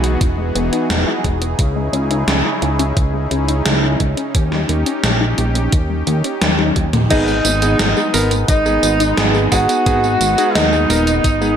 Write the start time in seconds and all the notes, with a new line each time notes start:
Already playing: B1 E3 B3 D#4 F#4 G#4
0.03 B3, closed hi-hat
0.21 E1, kick, closed hi-hat
0.38 G#3
0.55 E1 B3, closed hi-hat
0.72 D#4, closed hi-hat
0.90 E1, snare, closed hi-hat
1.07 E4
1.24 E1 G#3, kick, closed hi-hat
1.41 B3, closed hi-hat
1.59 C#2 C#3 C#4 E4, kick, closed hi-hat
1.76 G#3
1.93 C#2 C#4, closed hi-hat
2.10 D#4, closed hi-hat
2.28 C#2, snare, closed hi-hat
2.45 E4
2.62 C#2 G#3, closed hi-hat
2.79 C#4, closed hi-hat
2.97 C#2, kick, closed hi-hat
3.14 G#3
3.31 C#2 C#4, closed hi-hat
3.48 D#4, closed hi-hat
3.66 C#2, snare, closed hi-hat
3.83 E4
4.00 C#2 G#3, kick, closed hi-hat
4.17 C#4, closed hi-hat
4.35 D#2 G4, kick, closed hi-hat
4.52 G3, snare
4.69 D#2 A#3, closed hi-hat
4.86 C#4, closed hi-hat
5.04 A#1, snare, closed hi-hat
5.21 D#4
5.38 A#1 G3, closed hi-hat
5.55 A#3, closed hi-hat
5.72 D#2, kick, closed hi-hat
5.90 G3
6.07 D#2 A#3, closed hi-hat
6.24 C#4, closed hi-hat
6.42 D#2, snare, closed hi-hat, high tom
6.59 D#4, high tom
6.76 D#2 G3, kick, closed hi-hat
6.93 A#3, closed hi-hat, mid tom
7.10 G#1 G#3 B3 D#4 G#4 D#5, kick, closed hi-hat, crash, tambourine
7.28 G#3, tambourine
7.45 G#1 B3, closed hi-hat, tambourine
7.62 B3 D#4 G#4, closed hi-hat, tambourine
7.79 G#1, snare, closed hi-hat, tambourine
7.97 G#4, tambourine
8.14 G#1 G#3 B3 D#4 A#4, open hi-hat, tambourine
8.31 B3, closed hi-hat, tambourine
8.48 G#1 D#4 D#5, kick, closed hi-hat, tambourine
8.66 G#3 B3 D#4 G#4, tambourine
8.83 G#1 B3, closed hi-hat, tambourine
9.00 D#4, closed hi-hat, tambourine
9.17 G#1 B3 D#4 G#4, snare, closed hi-hat, tambourine
9.35 G#4, tambourine
9.52 G#1 G#3 B3 D#4 F#4 G#4 F#5, kick, open hi-hat, tambourine
9.69 B3, closed hi-hat, tambourine
9.86 G#1 B3 D#4 G#4, kick, closed hi-hat, tambourine
10.04 G#3, tambourine
10.21 G#1 B3, closed hi-hat, tambourine
10.38 B3 D#4 G#4, closed hi-hat, tambourine
10.55 D#2 D#4 D#5, snare, closed hi-hat, tambourine
10.73 G#4, tambourine
10.90 D#1 G#3 B3 D#4 A#4, open hi-hat, tambourine
11.07 B3, closed hi-hat, tambourine
11.24 G#1, kick, closed hi-hat, tambourine
11.41 G#3 B3 D#4 G#4, tambourine